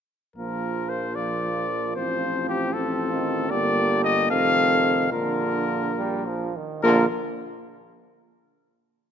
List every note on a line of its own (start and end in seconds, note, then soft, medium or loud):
0.36 1.92 A#1 soft
0.36 1.14 F3 soft
0.36 1.13 A#3 soft
0.36 1.14 F4 soft
0.36 0.91 A#4 medium
0.89 1.17 C5 medium
1.15 1.95 F3 soft
1.15 1.99 A#3 soft
1.15 1.95 F4 soft
1.15 1.95 D5 medium
1.96 3.47 A1 medium
1.96 2.73 F3 soft
1.96 2.74 C4 medium
1.96 2.72 F4 soft
1.96 2.47 C5 medium
2.49 2.75 G4 medium
2.73 3.11 F3 medium
2.73 3.49 C4 medium
2.73 3.51 F4 medium
2.73 3.52 A4 medium
3.13 3.52 D#3 medium
3.50 4.31 G1 medium
3.50 4.32 D3 medium
3.50 4.32 A#3 medium
3.50 4.32 G4 medium
3.50 4.03 D5 medium
4.04 4.30 D#5 loud
4.30 5.11 F1 medium
4.30 5.12 D#3 medium
4.30 5.11 C4 medium
4.30 5.10 A4 medium
4.30 5.11 F5 loud
5.11 6.53 A#1 medium
5.11 5.90 D3 medium
5.11 6.53 A#3 medium
5.11 6.52 F4 medium
5.11 6.53 A#4 medium
5.98 6.28 G3 medium
6.27 6.58 F3 medium
6.56 6.83 D#3 soft
6.83 7.06 A#1 medium
6.83 7.06 D3 medium
6.83 7.06 A#3 medium
6.83 7.07 F4 medium
6.83 7.06 A#4 medium